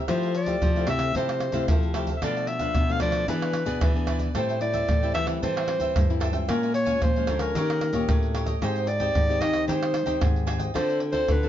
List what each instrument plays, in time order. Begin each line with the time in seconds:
0.08 nylon-string guitar F3 A3 E4 G4, cavaquinho E4 A4 C5 F5, clarinet C5, pandeiro, tamborim, shaker, surdo
0.23 cavaquinho A4 C5 F5, pandeiro, shaker
0.35 clarinet D5, muted cavaquinho stroke, pandeiro, shaker
0.46 nylon-string guitar A3 E4 G4, cavaquinho A4 C5 F5, pandeiro, shaker, surdo
0.62 nylon-string guitar C3 F3, pandeiro, tamborim, shaker, surdo
0.76 nylon-string guitar A3 E4 G4, cavaquinho A4 C5 F5, pandeiro, shaker
0.87 nylon-string guitar C3, cavaquinho E4 A4 C5 F5, clarinet E5, pandeiro, tamborim, shaker, surdo
0.99 cavaquinho A4 C5 F5, pandeiro, tamborim, shaker
1.15 nylon-string guitar C3 F3 A3 E4 G4, cavaquinho E4 A4 C5 F5, clarinet C5, pandeiro, shaker, surdo
1.29 cavaquinho A4 C5 F5, pandeiro, tamborim, shaker
1.40 muted cavaquinho stroke, pandeiro, tamborim, shaker
1.52 nylon-string guitar C3 A3 E4 G4, cavaquinho A4 C5 F5, pandeiro, shaker, surdo
1.68 nylon-string guitar C3 F3, cavaquinho E4 A4 C5 F5, pandeiro, tamborim, shaker, surdo
1.83 pandeiro, shaker
1.94 nylon-string guitar A3 E4 G4, cavaquinho E4 A4 C5 F5, pandeiro, tamborim, shaker, surdo
2.07 cavaquinho A4 C5 F5, pandeiro, shaker, surdo
2.16 clarinet E5
2.22 nylon-string guitar B2 F3 A3 D4, cavaquinho D4 A4 B4 F5, clarinet D5, pandeiro, tamborim, shaker, surdo
2.37 cavaquinho A4 B4 F5, pandeiro, shaker
2.47 clarinet E5, muted cavaquinho stroke, pandeiro
2.59 nylon-string guitar F3 A3 D4, cavaquinho A4 B4 F5, pandeiro, shaker, surdo
2.75 nylon-string guitar B2, pandeiro, tamborim, shaker, surdo
2.89 nylon-string guitar F3 A3 D4, cavaquinho A4 B4 F5, clarinet F5, pandeiro, shaker
3.00 nylon-string guitar F3, cavaquinho D4 A4 B4 F5, clarinet D5, pandeiro, tamborim, shaker, surdo
3.12 cavaquinho A4 B4 F5, pandeiro, tamborim, shaker
3.28 nylon-string guitar E3 B3 D4 G#4, cavaquinho E4 G#4 B4 D5, clarinet B4, pandeiro, shaker, surdo
3.42 cavaquinho G#4 B4 D5, pandeiro, tamborim, shaker
3.53 muted cavaquinho stroke, pandeiro, tamborim, shaker
3.66 nylon-string guitar B2 B3 D4 G#4, cavaquinho G#4 B4 D5, pandeiro, shaker, surdo
3.81 nylon-string guitar B2 E3, cavaquinho E4 G#4 B4 D5, pandeiro, tamborim, shaker, surdo
3.95 nylon-string guitar B3 D4 G#4, pandeiro, shaker
4.07 cavaquinho E4 G#4 B4 D5, pandeiro, tamborim, shaker, surdo
4.19 cavaquinho G#4 B4 D5, pandeiro, shaker, surdo
4.35 nylon-string guitar A2 G3 C4 E4, cavaquinho A4 C5 E5 G5, clarinet C5, pandeiro, tamborim, shaker, surdo
4.49 cavaquinho C5 E5 G5, pandeiro, shaker
4.60 nylon-string guitar G3 C4 E4, clarinet D5, muted cavaquinho stroke, pandeiro, shaker
4.73 cavaquinho C5 E5 G5, pandeiro, shaker, surdo
4.88 nylon-string guitar A2 E3, pandeiro, tamborim, shaker, surdo
5.03 nylon-string guitar G3 C4 E4, cavaquinho C5 E5 G5, pandeiro, shaker
5.14 nylon-string guitar E3, cavaquinho A4 C5 E5 G5, clarinet E5, pandeiro, tamborim, surdo
5.26 nylon-string guitar G3 C4 E4, cavaquinho C5 E5 G5, pandeiro, tamborim, shaker
5.42 nylon-string guitar A2 E3, cavaquinho A4 C5 E5 G5, clarinet C5, pandeiro, shaker, surdo
5.57 cavaquinho C5 E5 G5, pandeiro, tamborim, shaker
5.67 nylon-string guitar G3 C4 E4, muted cavaquinho stroke, pandeiro, tamborim
5.80 nylon-string guitar E3, cavaquinho C5 E5 G5, pandeiro, shaker, surdo
5.95 nylon-string guitar G2 E3, cavaquinho A4 C5 E5 G5, pandeiro, tamborim, shaker, surdo
6.10 nylon-string guitar G3 C4 E4, pandeiro, shaker
6.20 cavaquinho A4 C5 E5 G5, pandeiro, tamborim, surdo
6.32 nylon-string guitar G#3 C#4 F4, cavaquinho C5 E5 G5, pandeiro, shaker, surdo
6.48 nylon-string guitar A#2, cavaquinho A#4 C#5 F5 G#5, clarinet A#4, pandeiro, tamborim, shaker, surdo
6.63 cavaquinho C#5 F5 G#5, pandeiro, shaker
6.74 clarinet C#5, muted cavaquinho stroke, pandeiro, shaker
6.85 nylon-string guitar G#3 C#4 F4, cavaquinho C#5 F5 G#5, pandeiro, shaker, surdo
7.02 nylon-string guitar A#2 F3, clarinet C5, pandeiro, tamborim, shaker, surdo
7.16 nylon-string guitar G#3 C#4 F4, cavaquinho C#5 F5 G#5, pandeiro, shaker
7.27 nylon-string guitar D3, cavaquinho A#4 C#5 F5 G#5, pandeiro, tamborim, shaker, surdo
7.39 clarinet A#4, cavaquinho C#5 F5 G#5, pandeiro, tamborim, shaker
7.55 nylon-string guitar D#3 A#3 C#4 G4, cavaquinho D#4 G4 C#5 D#5, pandeiro, shaker, surdo
7.70 cavaquinho G4 C#5 D#5, pandeiro, tamborim, shaker
7.81 muted cavaquinho stroke, pandeiro, tamborim, shaker
7.93 nylon-string guitar A#2 A#3 C#4 G4, cavaquinho G4 C#5 D#5, pandeiro, shaker, surdo
8.09 nylon-string guitar A2, cavaquinho D#4 G4 C#5 D#5, pandeiro, tamborim, shaker, surdo
8.23 pandeiro, shaker
8.34 nylon-string guitar A#3 C#4 G4, cavaquinho D#4 G4 C#5 D#5, pandeiro, tamborim, shaker
8.46 cavaquinho G4 C#5 D#5, pandeiro, shaker, surdo
8.61 nylon-string guitar G#2 G#3 C4 D#4 G4, cavaquinho G#4 C5 D#5 G5, clarinet C5, pandeiro, tamborim, shaker, surdo
8.76 cavaquinho C5 D#5 G5, pandeiro, shaker
8.87 clarinet D5, muted cavaquinho stroke, pandeiro, shaker
9.00 nylon-string guitar C4 D#4 G4, cavaquinho C5 D#5 G5, pandeiro, shaker, surdo
9.15 nylon-string guitar G#2 D#3, pandeiro, tamborim, shaker, surdo
9.29 nylon-string guitar C4 D#4 G4, cavaquinho C5 D#5 G5, pandeiro, shaker
9.41 nylon-string guitar D#3, cavaquinho G#4 C5 D#5 G5, clarinet D#5, pandeiro, tamborim, surdo
9.53 cavaquinho C5 D#5 G5, pandeiro, tamborim, shaker
9.68 nylon-string guitar D#3 G#3 C4 D#4 G4, cavaquinho G#4 C5 D#5 G5, clarinet C5, pandeiro, shaker, surdo
9.82 cavaquinho C5 D#5 G5, pandeiro, tamborim, shaker
9.94 muted cavaquinho stroke, pandeiro, tamborim, shaker
10.06 nylon-string guitar D#3 C4 D#4 G4, cavaquinho C5 D#5 G5, pandeiro, shaker, surdo
10.21 nylon-string guitar G#2 D#3, cavaquinho G#4 C5 D#5 G5, pandeiro, tamborim, shaker, surdo
10.36 pandeiro, shaker
10.46 nylon-string guitar C4 D#4 G4, cavaquinho G#4 C5 D#5 G5, pandeiro, tamborim
10.58 cavaquinho C5 D#5 G5, pandeiro, shaker, surdo
10.74 nylon-string guitar D3 C4 F4 A4, cavaquinho F4 A4 C5 D5, clarinet C5, pandeiro, tamborim, shaker, surdo
10.89 cavaquinho A4 C5 D5, pandeiro, shaker
11.00 muted cavaquinho stroke, pandeiro
11.12 nylon-string guitar C4 F4 A4, cavaquinho A4 C5 D5, clarinet C5, pandeiro, shaker, surdo
11.28 nylon-string guitar A2 D3, clarinet B4, pandeiro, tamborim, shaker, surdo
11.42 nylon-string guitar C4 F4 A4, cavaquinho A4 C5 D5, pandeiro, shaker